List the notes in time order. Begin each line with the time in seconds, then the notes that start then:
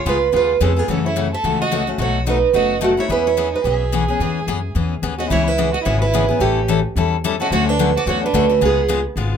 0.06 C#2 C#3 G#3 B3 F4 G#4 B4
0.32 D#2 C#3 G#3 B3 F4 G#4 B4
0.61 F2 C#3 G#3 B3 C#4 F4 G#4 A4
0.77 B3 F4 G#4
0.88 F#2 C#3 E3 A3 C#4 F#4 A4
1.06 E4 C#5
1.16 C#3 E3 A3 C#4 F#4
1.33 A4 E5
1.44 C#2 C#3 E3 A3 C#4 F#4
1.61 F#4 D#5
1.71 C#3 E3 A3 C#4 F#4
1.87 A3 C#4 F#4
1.98 B1 B2 F#3 A3 D#4 F#4 C#5
2.26 B2 F#3 A3 D#4 F#4 B4
2.53 F#1 B2 F#3 A3 D#4 F#4 D#5
2.81 B2 F#3 A3 D#4 F#4
2.97 A3 D#4 E4 F#4 C#5
3.09 E2 E3 B3 C#4 E4 G#4 B4
3.26 E4 C#5
3.37 E3 B3 C#4 G#4
3.53 D#4 B4
3.64 B1 E3 B3 C#4 G#4 E5
3.92 E3 B3 C#4 G#4
4.08 B3 C#4 G#4
4.19 E2 E3 B3 C#4 G#4
4.47 F#2 E3 B3 C#4 G#4
4.75 E2 E3 B3 C#4 G#4
5.02 D#2 E3 B3 C#4 G#4
5.18 B3 C#4 F#4 G#4 D#5
5.29 C#2 C#3 E3 B3 C#4 E4 G#4 C#5
5.45 E4 B4
5.58 C#3 E3 B3 C#4 G#4
5.73 F#4 D#5
5.83 G#1 C#3 E3 B3 C#4 E4 G#4 C#5
6.00 E4 B4
6.14 C#3 E3 B3 C#4 G#4
6.28 B3 C#4 G#4
6.39 A1 E3 G3 C#4 E4 G4 A4
6.68 E3 G3 C#4 E4 A4
6.96 E2 E3 G3 C#4 E4 A4
7.24 E3 G3 C#4 E4 A4
7.40 C#4 E4 F#4 A4 D#5
7.51 D2 D3 F#3 A3 C#4 F#4 C#5
7.68 D4 B4
7.79 D3 F#3 A3 C#4 F#4
7.97 F#4 D5
8.06 E2 D3 F#3 A3 C#4 F#4 C#5
8.23 D4 B4
8.33 D2 D3 F#3 A3 C#4 F#4
8.49 A3 C#4 F#4
8.61 C#2 C#3 G#3 B3 F4 G#4
8.65 G#4
8.88 C#3 G#3 B3 F4 G#4
9.16 G#1 C#3 G#3 B3 F4 G#4